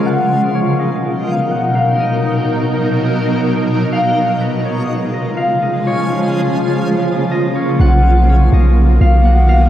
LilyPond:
<<
  \new Staff \with { instrumentName = "Harp" } { \time 4/4 \key b \lydian \tempo 4 = 124 fis''4 cis''8 dis''4 eis''8 fis''8 eis''8 | dis''1 | eis''4 b'8 cis''4 dis''8 eis''8 dis''8 | cis''2. dis''8 cis''8 |
fis''4 cis''8 dis''4 eis''8 fis''8 eis''8 | }
  \new Staff \with { instrumentName = "Synth texture" } { \time 4/4 \key b \lydian <b ais' dis''>1~ | <b ais' dis''>1 | <cis' gis' eis''>1~ | <cis' gis' eis''>1 |
r1 | }
  \new Staff \with { instrumentName = "Ambient pad" } { \time 4/4 \key b \lydian << { <b, fis dis'>1~ | <b, fis dis'>1 | <cis eis eis'>1~ | <cis eis eis'>1 |
<dis ais fis'>1 | } \\ { ais'1~ | ais'1 | gis1 | ais1 |
b1 | } >> }
  \new Staff \with { instrumentName = "808-style bass" } { \clef bass \time 4/4 \key b \lydian r1 | r1 | r1 | r1 |
b,,4. b,,4 b,,4. | }
>>